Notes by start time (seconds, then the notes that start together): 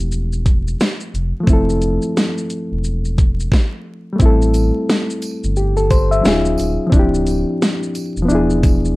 Already playing: F3 A3 C4 E4 G4
0.00 E1
0.12 shaker
0.33 shaker
0.46 kick, closed hi-hat, shaker
0.68 shaker
0.80 snare, shaker
1.00 shaker
1.14 F1, closed hi-hat, shaker
1.40 F3 A3
1.47 F1 C4 E4, kick, shaker
1.53 A4
1.70 shaker
1.82 closed hi-hat, shaker
2.02 shaker
2.17 snare, shaker
2.38 shaker
2.50 closed hi-hat, shaker
2.72 E1
2.84 shaker
3.05 shaker
3.18 kick, closed hi-hat, shaker
3.40 shaker
3.52 kick, snare
4.13 G3 A3
4.19 A1 C4 E4, kick, shaker
4.26 A4
4.42 shaker
4.54 closed hi-hat, tambourine, shaker
4.90 snare, shaker
5.10 shaker
5.22 closed hi-hat, tambourine, shaker
5.44 G1, shaker
5.57 G4, shaker
5.77 A4, shaker
5.90 C5, kick, closed hi-hat, tambourine, shaker
6.11 E5, shaker
6.21 D#1 F#3 C#4 D#4, shaker
6.25 F4 G#4, snare
6.45 shaker
6.58 D#1, closed hi-hat, tambourine, shaker
6.87 F3 C4
6.92 D1 D4 E4, kick, shaker
6.99 G4
7.14 shaker
7.27 closed hi-hat, tambourine, shaker
7.62 snare, shaker
7.83 shaker
7.95 closed hi-hat, tambourine, shaker
8.17 E1, shaker
8.22 F3 B3
8.28 E1 D4 E4, shaker
8.35 G#4
8.50 shaker
8.63 kick, closed hi-hat, tambourine, shaker
8.85 shaker